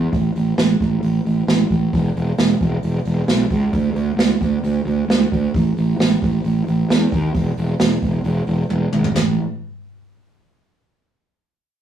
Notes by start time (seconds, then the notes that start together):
0.13 A1, kick, open hi-hat
0.35 A1, open hi-hat
0.58 A1, snare, open hi-hat
0.80 A1, kick, open hi-hat
1.02 A1, open hi-hat
1.25 A1, open hi-hat
1.47 A1, snare, open hi-hat
1.70 A1, kick, open hi-hat
1.93 E1, kick, open hi-hat
2.16 E1, open hi-hat
2.38 E1, snare, open hi-hat
2.61 E1, kick, open hi-hat
2.83 E1, open hi-hat
3.05 E1, open hi-hat
3.28 B1, snare, open hi-hat
3.50 C#2, kick, open hi-hat
3.73 D2, kick, open hi-hat
3.94 D2, open hi-hat
4.17 D2, snare, open hi-hat
4.40 D2, kick, open hi-hat
4.64 D2, open hi-hat
4.86 D2, open hi-hat
5.09 D2, snare, open hi-hat
5.32 D2, kick, open hi-hat
5.54 A1, kick, open hi-hat
5.77 A1, open hi-hat
5.99 A1, snare, open hi-hat
6.22 A1, kick, open hi-hat
6.44 A1, open hi-hat
6.67 A1, open hi-hat
6.89 E2, snare, open hi-hat
7.12 D#2, kick, open hi-hat
7.34 E1, kick, open hi-hat
7.57 E1, open hi-hat
7.79 E1, snare, open hi-hat
8.02 E1, kick, open hi-hat
8.24 E1, open hi-hat
8.47 E1, open hi-hat
8.69 E1, high tom
8.93 G#1, mid tom
9.04 floor tom
9.15 A1, snare, floor tom, splash